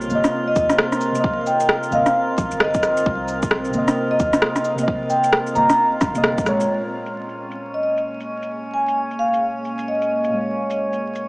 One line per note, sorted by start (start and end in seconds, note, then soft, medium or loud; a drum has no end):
0.00 6.66 C4 medium
0.00 6.71 F4 medium
0.00 6.66 A#4 medium
0.00 6.66 D#5 medium
0.00 6.71 F5 medium
0.00 shaker soft
0.07 0.23 G1 medium
0.07 1.10 C3 medium
0.07 1.12 A#3 medium
0.07 cabasa medium
0.15 1.14 D#5 medium
0.24 cross-stick medium
0.24 shaker medium
0.48 0.53 D#5 medium
0.56 0.69 D#2 medium
0.56 0.65 D#5 medium
0.56 kick loud
0.56 cabasa medium
0.56 shaker soft
0.69 cross-stick medium
0.69 shaker medium
0.78 cross-stick loud
0.92 cross-stick soft
0.92 shaker soft
1.01 cabasa medium
1.12 1.89 C3 medium
1.12 1.90 A#3 medium
1.12 shaker medium
1.20 1.93 D#5 medium
1.24 kick loud
1.47 1.71 G5 medium
1.47 cabasa medium
1.60 cabasa soft
1.60 shaker medium
1.69 cross-stick loud
1.83 shaker soft
1.91 2.05 G1 medium
1.91 2.03 C3 medium
1.91 2.04 A#3 medium
1.91 2.17 F5 medium
1.91 cabasa medium
1.95 2.05 D#5 medium
2.06 cross-stick medium
2.06 shaker medium
2.38 2.51 A#1 loud
2.38 kick loud
2.38 cabasa medium
2.38 shaker soft
2.51 3.05 G1 medium
2.51 shaker medium
2.60 3.07 D#5 medium
2.60 cross-stick loud
2.74 kick loud
2.74 shaker soft
2.83 cross-stick medium
2.83 cabasa medium
2.97 shaker medium
3.06 3.73 C2 loud
3.06 kick loud
3.28 cabasa medium
3.42 kick loud
3.42 shaker medium
3.51 cross-stick medium
3.65 shaker soft
3.70 4.74 C3 medium
3.70 cabasa medium
3.74 3.87 G1 medium
3.74 4.76 A#3 medium
3.74 4.78 D#5 loud
3.88 cross-stick medium
3.88 shaker medium
4.11 4.17 D#5 medium
4.20 4.33 D#2 medium
4.20 4.29 D#5 medium
4.20 kick loud
4.20 cabasa medium
4.20 shaker soft
4.33 cross-stick medium
4.33 shaker medium
4.42 cross-stick loud
4.56 cross-stick medium
4.56 shaker soft
4.65 cabasa medium
4.75 5.52 C3 medium
4.75 shaker medium
4.79 5.54 A#3 medium
4.79 5.56 D#5 medium
4.88 kick loud
5.10 5.34 G5 medium
5.10 cabasa medium
5.24 cabasa soft
5.24 shaker medium
5.33 cross-stick loud
5.47 shaker soft
5.54 5.69 G1 medium
5.54 5.66 C3 medium
5.54 5.67 A#3 medium
5.54 5.68 D#5 medium
5.54 5.65 A#5 loud
5.54 cabasa medium
5.70 5.76 A#5 medium
5.70 cross-stick medium
5.70 shaker medium
6.01 6.69 G1 medium
6.01 kick loud
6.01 cross-stick medium
6.01 cabasa medium
6.01 shaker soft
6.13 6.44 C3 medium
6.13 6.45 A#3 medium
6.13 shaker medium
6.17 6.46 D#5 loud
6.24 cross-stick loud
6.38 kick loud
6.38 shaker soft
6.45 6.64 A#2 loud
6.45 6.68 G#3 loud
6.45 6.73 C#5 loud
6.45 cross-stick medium
6.45 cabasa medium
6.60 shaker medium
6.66 10.28 A#2 medium
6.66 10.31 G#3 medium
6.66 11.28 C#4 medium
6.66 11.28 C#5 medium
6.70 11.28 A#3 medium
6.70 11.28 G#4 medium
6.70 11.28 C#5 medium
6.74 10.33 C#5 medium
7.06 shaker medium
7.29 shaker soft
7.51 shaker medium
7.74 7.80 D#5 medium
7.83 7.92 D#5 medium
7.97 shaker medium
8.20 shaker soft
8.42 shaker soft
8.74 8.98 G#5 medium
8.88 shaker medium
9.11 shaker soft
9.19 9.44 F5 medium
9.33 shaker medium
9.65 shaker soft
9.79 shaker medium
9.88 10.34 D#5 medium
10.02 shaker soft
10.24 shaker medium
10.30 11.28 A#2 medium
10.30 11.28 G#3 medium
10.37 11.28 C#5 medium
10.70 shaker medium
10.93 shaker soft
11.15 shaker medium